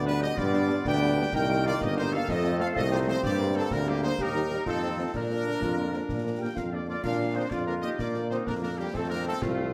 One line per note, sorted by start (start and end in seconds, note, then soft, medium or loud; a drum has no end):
0.00 0.29 D2 loud
0.00 1.28 D3 loud
0.00 0.34 B3 loud
0.00 1.28 B3 loud
0.05 0.12 G3 loud
0.05 0.12 B3 loud
0.05 0.20 D4 loud
0.05 0.12 D4 medium
0.05 0.20 B4 loud
0.05 0.21 B4 loud
0.21 0.27 G3 loud
0.21 0.27 B3 loud
0.21 0.27 D4 medium
0.21 0.37 G4 loud
0.21 0.36 D#5 loud
0.21 snare medium
0.36 0.77 G2 loud
0.36 0.82 B3 loud
0.36 0.84 F4 loud
0.36 0.82 D5 loud
0.36 0.85 D5 loud
0.36 concert bass drum loud
0.36 snare medium
0.53 0.59 G3 medium
0.53 0.59 B3 medium
0.53 0.59 D4 loud
0.53 snare medium
0.68 0.74 G3 medium
0.68 0.74 B3 loud
0.68 0.74 D4 loud
0.68 snare medium
0.85 1.25 D2 loud
0.85 1.35 D4 loud
0.85 1.33 B4 loud
0.85 1.29 G5 loud
0.85 1.30 G5 loud
0.85 concert bass drum medium
0.85 snare medium
1.01 1.07 G3 loud
1.01 1.07 B3 loud
1.01 1.07 D4 medium
1.17 1.23 G3 loud
1.17 1.23 B3 loud
1.17 1.23 D4 loud
1.32 1.73 C2 loud
1.32 2.25 D#3 loud
1.32 2.29 A#3 loud
1.32 2.00 D#4 loud
1.32 1.62 A#4 loud
1.32 1.62 G5 loud
1.32 1.63 G5 loud
1.32 concert bass drum medium
1.32 snare medium
1.32 crash soft
1.49 1.55 G3 medium
1.49 1.54 A#3 loud
1.49 1.55 D#4 medium
1.65 1.71 G3 loud
1.65 1.71 A#3 loud
1.65 1.71 D#4 medium
1.65 1.81 F4 loud
1.65 1.80 D5 loud
1.65 1.73 D5 loud
1.80 2.20 G1 loud
1.80 1.88 G4 loud
1.80 1.97 D#5 loud
1.80 1.96 D#5 loud
1.80 concert bass drum loud
1.80 snare medium
1.96 2.02 G3 medium
1.96 2.02 A#3 medium
1.96 2.02 D#4 medium
1.96 2.11 D#4 loud
1.96 2.11 C5 loud
1.96 2.03 C5 loud
2.11 2.18 G3 loud
2.11 2.18 A#3 loud
2.11 2.18 D#4 loud
2.11 2.27 A4 loud
2.11 2.28 F5 loud
2.11 2.19 F5 loud
2.11 snare medium
2.28 2.68 F2 loud
2.28 3.24 F3 loud
2.28 3.24 A3 loud
2.28 2.72 C4 loud
2.28 2.58 A4 loud
2.28 2.36 D#5 loud
2.28 2.60 D#5 loud
2.28 concert bass drum medium
2.28 snare medium
2.44 2.50 F3 medium
2.44 2.50 A3 loud
2.44 2.50 C4 loud
2.44 snare medium
2.59 2.65 F3 loud
2.59 2.65 A3 medium
2.59 2.65 C4 loud
2.59 2.73 A4 loud
2.59 2.67 F5 loud
2.59 2.75 F5 loud
2.59 snare medium
2.74 3.15 C2 loud
2.74 4.14 C4 loud
2.74 2.82 A4 loud
2.74 2.91 D#5 loud
2.74 2.92 D#5 loud
2.74 concert bass drum medium
2.74 snare medium
2.91 2.97 F3 loud
2.91 2.97 A3 loud
2.91 2.97 C4 loud
2.91 3.06 D#4 loud
2.91 2.99 C5 loud
2.91 3.08 C5 loud
3.08 3.14 F3 loud
3.08 3.14 A3 loud
3.08 3.13 C4 loud
3.08 3.15 D#4 loud
3.08 3.23 C5 loud
3.08 3.15 C5 loud
3.22 3.63 G2 loud
3.22 4.48 G3 loud
3.22 4.48 A#3 loud
3.22 3.37 G4 loud
3.22 3.53 D5 loud
3.22 3.33 D5 loud
3.22 concert bass drum loud
3.22 snare medium
3.22 crash soft
3.40 3.45 D3 medium
3.40 3.45 G3 medium
3.40 3.45 A#3 loud
3.54 3.60 D3 medium
3.54 3.60 G3 loud
3.54 3.60 A#3 medium
3.54 3.62 C4 loud
3.54 3.71 A4 loud
3.71 4.11 D2 loud
3.71 3.78 D4 loud
3.71 3.79 A#4 loud
3.71 3.88 A#4 loud
3.71 concert bass drum medium
3.71 snare medium
3.86 3.92 D3 medium
3.86 3.92 G3 loud
3.86 3.92 A#3 medium
3.86 4.02 A#3 loud
3.86 3.94 G4 loud
3.86 4.04 G4 loud
4.03 4.08 D3 medium
4.03 4.08 G3 medium
4.03 4.08 A#3 medium
4.03 4.11 D#4 loud
4.03 4.18 C5 loud
4.03 snare medium
4.18 4.58 D#2 loud
4.18 4.64 D#4 loud
4.18 4.64 G4 loud
4.18 4.63 A#4 loud
4.18 4.68 A#4 loud
4.18 concert bass drum medium
4.18 snare medium
4.34 4.40 D#3 medium
4.34 4.40 G3 medium
4.34 4.40 D#4 medium
4.34 snare medium
4.50 4.56 D#3 medium
4.50 4.56 G3 medium
4.50 4.56 D#4 medium
4.50 snare medium
4.65 5.06 F2 loud
4.65 5.13 F3 medium
4.65 5.11 C4 loud
4.65 5.10 D#4 medium
4.65 5.16 F4 loud
4.65 5.11 A4 loud
4.65 concert bass drum medium
4.65 snare medium
4.83 4.88 D#3 medium
4.83 4.88 F3 medium
4.83 4.88 C4 medium
4.98 5.04 D#3 medium
4.98 5.04 F3 medium
4.98 5.04 C4 medium
5.14 5.53 A#2 loud
5.14 6.84 F3 medium
5.14 5.58 D4 loud
5.14 6.89 D4 medium
5.14 6.37 D4 loud
5.14 6.41 A#4 loud
5.14 6.37 A#4 loud
5.14 concert bass drum medium
5.14 snare medium
5.14 crash soft
5.31 5.36 D3 medium
5.31 5.36 F3 medium
5.31 5.36 A#3 medium
5.46 5.51 D3 medium
5.46 5.52 F3 medium
5.46 5.51 A#3 medium
5.61 6.01 F2 loud
5.61 5.91 F4 loud
5.61 concert bass drum medium
5.61 snare medium
5.78 5.83 D3 medium
5.78 5.83 F3 medium
5.78 5.83 A#3 medium
5.93 5.99 D3 medium
5.93 5.99 F3 medium
5.93 5.99 A#3 medium
5.93 6.00 C4 medium
5.93 snare medium
6.08 6.48 A#2 loud
6.08 6.15 D4 loud
6.08 concert bass drum medium
6.08 snare medium
6.24 6.30 D3 medium
6.24 6.30 F3 medium
6.24 6.30 A#3 medium
6.24 6.32 A#3 medium
6.38 6.47 D3 medium
6.38 6.47 F3 medium
6.38 6.47 A#3 medium
6.38 6.54 G4 loud
6.38 6.47 A#4 loud
6.38 6.44 G5 loud
6.38 6.56 G5 loud
6.54 6.96 F2 loud
6.54 6.71 F4 loud
6.54 6.64 A#4 medium
6.54 6.70 F5 medium
6.54 6.73 F5 medium
6.54 concert bass drum medium
6.54 snare medium
6.70 6.78 D3 medium
6.70 6.78 F3 medium
6.70 6.78 A#3 medium
6.70 6.80 D4 medium
6.70 6.80 F4 medium
6.70 6.76 D5 medium
6.70 6.88 D5 loud
6.86 6.93 D3 medium
6.86 6.93 F3 medium
6.86 6.93 A#3 medium
6.86 6.95 D4 medium
6.86 7.03 F4 medium
6.86 7.02 D5 loud
6.86 7.03 D5 loud
7.02 7.44 A#2 loud
7.02 7.48 D4 loud
7.02 7.17 F4 loud
7.02 7.18 A#4 loud
7.02 7.35 F5 loud
7.02 7.34 F5 loud
7.02 concert bass drum medium
7.02 snare medium
7.02 crash medium
7.20 7.25 D3 medium
7.20 7.25 F3 medium
7.20 7.26 A#3 medium
7.34 7.41 D3 medium
7.34 7.41 F3 medium
7.34 7.41 A#3 medium
7.34 7.50 C4 loud
7.34 7.42 D#4 medium
7.34 7.51 C5 loud
7.50 7.87 F2 loud
7.50 7.66 D4 loud
7.50 7.95 F4 loud
7.50 7.58 F4 medium
7.50 7.67 D5 loud
7.50 concert bass drum medium
7.50 snare medium
7.66 7.73 D3 medium
7.66 7.73 F3 medium
7.66 7.85 A#3 loud
7.66 7.73 A#3 medium
7.66 7.74 D4 medium
7.66 7.74 A#4 loud
7.81 7.89 D3 medium
7.81 7.89 F3 medium
7.81 7.89 A#3 medium
7.81 8.01 D#4 loud
7.81 7.98 G4 loud
7.81 7.88 D#5 loud
7.81 7.98 D#5 loud
7.81 snare medium
7.97 8.39 A#2 loud
7.97 8.94 A#3 medium
7.97 8.30 D4 medium
7.97 8.14 F4 medium
7.97 8.28 D5 loud
7.97 8.07 D5 loud
7.97 concert bass drum medium
7.97 snare medium
8.14 8.21 D3 medium
8.14 8.21 F3 medium
8.14 8.21 A#3 medium
8.14 snare medium
8.29 8.36 D3 medium
8.29 8.37 F3 medium
8.29 8.37 A#3 medium
8.29 8.48 C4 loud
8.29 8.45 D#4 loud
8.29 8.37 C5 loud
8.29 8.38 C5 loud
8.29 snare medium
8.46 8.86 F2 loud
8.46 8.63 A#3 loud
8.46 8.53 D4 loud
8.46 8.53 A#4 loud
8.46 concert bass drum medium
8.46 snare medium
8.62 8.68 D3 medium
8.62 8.68 F3 medium
8.62 8.68 A#3 medium
8.62 8.70 A#3 loud
8.62 8.69 D4 medium
8.62 8.77 A#4 loud
8.62 8.71 A#4 loud
8.78 8.84 D3 medium
8.78 8.84 F3 medium
8.78 8.97 G3 medium
8.78 8.85 A#3 medium
8.78 8.84 A#3 medium
8.78 8.94 G4 loud
8.78 8.85 G4 loud
8.93 9.33 F2 loud
8.93 9.11 A3 loud
8.93 9.73 C4 loud
8.93 9.09 C4 loud
8.93 9.10 A4 loud
8.93 concert bass drum medium
8.93 snare medium
8.93 crash soft
9.09 9.15 D#3 medium
9.09 9.16 F3 medium
9.09 9.15 A3 medium
9.09 9.26 A#3 loud
9.09 9.26 D4 loud
9.09 9.24 A#4 loud
9.09 9.25 A#4 loud
9.26 9.31 D#3 medium
9.26 9.32 F3 medium
9.26 9.31 A3 medium
9.26 9.34 A3 loud
9.26 9.33 C4 loud
9.26 9.41 A4 loud
9.41 9.73 C2 loud
9.41 9.73 F3 loud
9.41 9.73 A3 loud
9.41 9.73 F4 loud
9.41 concert bass drum medium
9.41 snare medium
9.57 9.63 D#3 medium
9.57 9.63 F3 medium
9.57 9.63 A3 medium